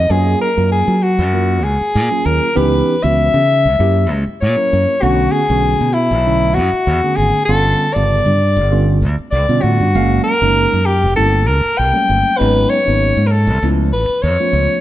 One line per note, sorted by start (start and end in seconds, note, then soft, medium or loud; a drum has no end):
0.00 0.12 D#5 medium
0.10 0.34 F#2 medium
0.10 0.48 F#3 medium
0.10 0.48 A#3 medium
0.10 0.48 C#4 medium
0.10 0.49 F4 medium
0.10 0.41 G#4 medium
0.10 0.49 G#4 medium
0.41 0.70 A#4 medium
0.57 0.82 F#2 medium
0.57 0.94 F#3 medium
0.57 0.94 A#3 medium
0.57 0.94 C#4 medium
0.57 0.94 F4 medium
0.57 0.94 A#4 medium
0.72 1.04 G#4 medium
0.88 1.20 F#3 medium
1.02 1.11 F4 soft
1.02 1.65 F#4 medium
1.02 1.11 A#4 soft
1.19 1.64 F#2 medium
1.33 1.59 F#3 medium
1.33 1.59 A#3 medium
1.33 1.59 C#4 medium
1.33 1.59 F4 medium
1.33 1.59 A#4 medium
1.64 1.77 C#2 medium
1.64 2.27 G#4 medium
1.64 1.73 G#4 soft
1.81 muted fingered electric bass stroke soft
1.95 2.08 A#2 medium
2.11 2.48 F#3 medium
2.11 2.48 A#3 medium
2.11 2.48 C#4 medium
2.11 2.48 F4 medium
2.11 2.49 G#4 medium
2.26 2.39 D#2 medium
2.26 2.58 A#4 medium
2.55 2.81 C#2 medium
2.55 2.94 E3 medium
2.55 2.94 B3 medium
2.55 2.94 C#4 medium
2.55 2.94 D#4 medium
2.55 2.94 G4 loud
2.55 3.05 B4 medium
3.03 3.28 C#2 medium
3.03 3.41 D#3 medium
3.03 3.40 E3 medium
3.03 3.41 B3 medium
3.03 3.41 C#4 medium
3.03 3.41 F#4 medium
3.03 4.15 E5 loud
3.34 3.67 C#3 medium
3.48 3.57 D#4 soft
3.48 3.57 F#4 soft
3.65 3.77 C#2 medium
3.79 4.11 F#2 medium
3.79 4.05 F#3 medium
3.79 4.05 A#3 medium
3.79 4.05 C#4 medium
3.79 4.05 E4 medium
3.79 4.05 G4 medium
4.10 4.23 C#2 medium
4.10 4.18 E4 soft
4.10 4.19 F#4 soft
4.27 muted fingered electric bass stroke soft
4.41 4.55 A#2 medium
4.41 5.03 C#5 medium
4.56 4.94 F#3 medium
4.56 4.94 A#3 medium
4.56 4.94 C#4 medium
4.56 4.94 E4 medium
4.56 4.94 A#4 medium
4.73 4.85 F#2 medium
5.02 5.27 B1 medium
5.02 5.40 D3 medium
5.02 5.40 A3 medium
5.02 5.40 B3 medium
5.02 5.40 C#4 medium
5.02 5.34 F#4 medium
5.02 5.41 F#4 loud
5.32 5.95 G#4 loud
5.49 5.74 B1 medium
5.49 5.86 D3 medium
5.49 5.87 A3 medium
5.49 5.87 B3 medium
5.49 5.87 C#4 medium
5.49 5.87 F#4 medium
5.81 6.13 B2 medium
5.93 6.03 C#4 soft
5.93 6.55 E4 medium
5.93 6.04 A4 soft
6.11 6.58 B1 medium
6.26 6.51 D3 medium
6.26 6.51 A3 medium
6.26 6.51 B3 medium
6.26 6.51 C#4 medium
6.26 6.51 E4 medium
6.54 6.69 F#2 medium
6.54 7.18 F#4 medium
6.73 muted fingered electric bass stroke soft
6.87 7.00 E2 medium
7.03 7.40 D3 medium
7.03 7.40 A3 medium
7.03 7.40 B3 medium
7.03 7.40 C#4 medium
7.03 7.41 G#4 medium
7.16 7.31 G#1 medium
7.16 7.45 G#4 medium
7.45 7.73 G1 medium
7.45 7.86 D3 medium
7.45 7.86 G3 medium
7.45 7.86 B3 medium
7.45 7.86 C#4 medium
7.45 7.86 F4 medium
7.45 7.95 A4 medium
7.94 8.20 G1 medium
7.94 8.33 C#3 medium
7.94 8.32 D3 medium
7.94 8.32 G3 medium
7.94 8.33 B3 medium
7.94 8.33 F4 medium
7.94 9.05 D5 loud
8.26 8.58 G2 medium
8.41 8.49 C#4 soft
8.41 8.50 G4 soft
8.57 9.04 G1 medium
8.71 8.96 D3 medium
8.71 8.97 G3 medium
8.71 8.97 B3 medium
8.71 8.97 C#4 medium
8.71 8.97 F4 medium
9.02 9.15 D2 medium
9.02 9.11 F4 soft
9.18 muted fingered electric bass stroke soft
9.31 9.45 C#2 medium
9.31 9.64 D5 medium
9.49 9.62 B2 medium
9.49 9.86 D3 medium
9.49 9.86 G3 medium
9.49 9.86 B3 medium
9.49 9.86 C#4 medium
9.49 9.86 F4 medium
9.62 9.78 A2 medium
9.62 10.23 F#4 medium
9.80 9.93 G2 medium
9.95 10.19 F#1 medium
9.95 10.32 F#3 medium
9.95 10.32 G#3 medium
9.95 10.32 A#3 medium
9.95 10.32 C#4 medium
9.95 10.33 F5 loud
10.24 10.87 A#4 medium
10.41 10.65 F#1 medium
10.41 10.78 F#3 medium
10.41 10.78 G#3 medium
10.41 10.78 A#3 medium
10.41 10.79 C#4 medium
10.41 10.79 D#4 medium
10.73 11.05 F#2 medium
10.86 10.94 C#4 soft
10.86 10.95 F4 soft
10.86 11.15 G4 medium
11.04 11.15 F1 medium
11.16 11.50 G1 medium
11.16 11.42 G3 medium
11.16 11.42 A3 medium
11.16 11.42 A#3 medium
11.16 11.42 C#4 medium
11.16 11.42 E4 medium
11.16 11.49 A4 medium
11.47 11.62 C#2 medium
11.47 11.55 C#4 soft
11.47 11.56 E4 soft
11.47 11.79 A#4 medium
11.78 11.92 C2 medium
11.78 12.39 G5 loud
11.93 12.31 F#3 medium
11.93 12.30 G3 medium
11.93 12.31 A3 medium
11.93 12.31 A#3 medium
11.93 12.31 C#4 medium
12.10 12.22 G1 medium
12.38 12.64 G#1 medium
12.38 12.77 F#3 medium
12.38 12.77 G#3 medium
12.38 12.77 B3 medium
12.38 12.77 C#4 medium
12.38 12.77 D#4 medium
12.38 12.71 B4 medium
12.70 13.28 C#5 loud
12.85 13.11 G#1 medium
12.85 13.23 F#3 medium
12.85 13.23 A#3 medium
12.85 13.23 B3 medium
12.85 13.23 C#4 medium
12.85 13.23 D#4 medium
13.17 13.49 G#2 medium
13.27 13.33 A#4 medium
13.32 13.67 A4 medium
13.47 13.59 C2 medium
13.62 13.93 C#2 medium
13.62 13.88 F3 medium
13.62 13.88 A3 medium
13.62 13.88 B3 medium
13.62 13.88 C#4 medium
13.62 13.88 E4 medium
13.93 14.06 A1 medium
13.93 14.24 B4 medium
14.09 muted fingered electric bass stroke soft
14.22 14.36 F2 medium
14.22 14.81 C#5 medium
14.40 14.77 F3 medium
14.40 14.77 A3 medium
14.40 14.77 B3 medium
14.40 14.77 C#4 medium
14.40 14.77 F4 medium
14.53 14.66 C#2 medium